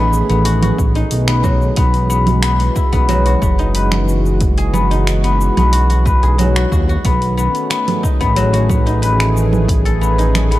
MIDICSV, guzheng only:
0, 0, Header, 1, 2, 480
1, 0, Start_track
1, 0, Tempo, 659341
1, 1291, Time_signature, 4, 2, 24, 8
1, 7712, End_track
2, 0, Start_track
2, 0, Title_t, "Guzheng"
2, 0, Program_c, 0, 107
2, 0, Note_on_c, 0, 54, 95
2, 0, Note_on_c, 0, 59, 78
2, 0, Note_on_c, 0, 63, 75
2, 0, Note_on_c, 0, 66, 78
2, 0, Note_on_c, 0, 69, 97
2, 0, Note_on_c, 0, 71, 77
2, 211, Note_off_c, 0, 59, 0
2, 214, Note_on_c, 0, 59, 79
2, 307, Note_off_c, 0, 66, 0
2, 328, Note_on_c, 0, 66, 81
2, 379, Note_off_c, 0, 71, 0
2, 452, Note_off_c, 0, 66, 0
2, 455, Note_on_c, 0, 66, 72
2, 693, Note_off_c, 0, 63, 0
2, 696, Note_on_c, 0, 63, 79
2, 930, Note_off_c, 0, 59, 0
2, 933, Note_on_c, 0, 59, 73
2, 1037, Note_off_c, 0, 54, 0
2, 1046, Note_on_c, 0, 54, 77
2, 1092, Note_off_c, 0, 69, 0
2, 1284, Note_off_c, 0, 59, 0
2, 1287, Note_on_c, 0, 59, 107
2, 1327, Note_off_c, 0, 54, 0
2, 1523, Note_off_c, 0, 59, 0
2, 1526, Note_on_c, 0, 59, 77
2, 1764, Note_off_c, 0, 59, 0
2, 1767, Note_on_c, 0, 59, 88
2, 2006, Note_on_c, 0, 64, 70
2, 2050, Note_off_c, 0, 63, 0
2, 2126, Note_off_c, 0, 59, 0
2, 2129, Note_on_c, 0, 59, 98
2, 2229, Note_off_c, 0, 66, 0
2, 2247, Note_on_c, 0, 54, 98
2, 2374, Note_on_c, 0, 66, 75
2, 2484, Note_off_c, 0, 59, 0
2, 2487, Note_on_c, 0, 59, 79
2, 2613, Note_on_c, 0, 63, 77
2, 2657, Note_off_c, 0, 64, 0
2, 2730, Note_on_c, 0, 71, 74
2, 3332, Note_on_c, 0, 68, 99
2, 3444, Note_off_c, 0, 59, 0
2, 3447, Note_on_c, 0, 59, 77
2, 3571, Note_off_c, 0, 63, 0
2, 3574, Note_on_c, 0, 63, 75
2, 3810, Note_off_c, 0, 59, 0
2, 3813, Note_on_c, 0, 59, 73
2, 4052, Note_off_c, 0, 59, 0
2, 4055, Note_on_c, 0, 59, 79
2, 4148, Note_off_c, 0, 66, 0
2, 4168, Note_on_c, 0, 66, 80
2, 4222, Note_off_c, 0, 71, 0
2, 4290, Note_off_c, 0, 66, 0
2, 4292, Note_on_c, 0, 66, 70
2, 4408, Note_on_c, 0, 71, 80
2, 4533, Note_off_c, 0, 68, 0
2, 4536, Note_on_c, 0, 68, 73
2, 4639, Note_off_c, 0, 54, 0
2, 4647, Note_on_c, 0, 54, 74
2, 4772, Note_off_c, 0, 66, 0
2, 4775, Note_on_c, 0, 66, 67
2, 4890, Note_off_c, 0, 66, 0
2, 4893, Note_on_c, 0, 66, 75
2, 5014, Note_off_c, 0, 66, 0
2, 5017, Note_on_c, 0, 66, 75
2, 5129, Note_off_c, 0, 59, 0
2, 5132, Note_on_c, 0, 59, 102
2, 5167, Note_off_c, 0, 54, 0
2, 5365, Note_off_c, 0, 59, 0
2, 5368, Note_on_c, 0, 59, 76
2, 5542, Note_off_c, 0, 63, 0
2, 5604, Note_off_c, 0, 59, 0
2, 5606, Note_on_c, 0, 59, 83
2, 5847, Note_on_c, 0, 63, 72
2, 5899, Note_off_c, 0, 71, 0
2, 5971, Note_off_c, 0, 59, 0
2, 5974, Note_on_c, 0, 59, 98
2, 6089, Note_on_c, 0, 54, 97
2, 6191, Note_off_c, 0, 68, 0
2, 6209, Note_off_c, 0, 66, 0
2, 6212, Note_on_c, 0, 66, 76
2, 6326, Note_off_c, 0, 59, 0
2, 6329, Note_on_c, 0, 59, 80
2, 6450, Note_off_c, 0, 63, 0
2, 6453, Note_on_c, 0, 63, 78
2, 6567, Note_on_c, 0, 71, 76
2, 7173, Note_on_c, 0, 69, 98
2, 7286, Note_off_c, 0, 59, 0
2, 7289, Note_on_c, 0, 59, 78
2, 7410, Note_off_c, 0, 63, 0
2, 7413, Note_on_c, 0, 63, 76
2, 7650, Note_off_c, 0, 59, 0
2, 7653, Note_on_c, 0, 59, 69
2, 7712, Note_off_c, 0, 54, 0
2, 7712, Note_off_c, 0, 59, 0
2, 7712, Note_off_c, 0, 63, 0
2, 7712, Note_off_c, 0, 66, 0
2, 7712, Note_off_c, 0, 69, 0
2, 7712, Note_off_c, 0, 71, 0
2, 7712, End_track
0, 0, End_of_file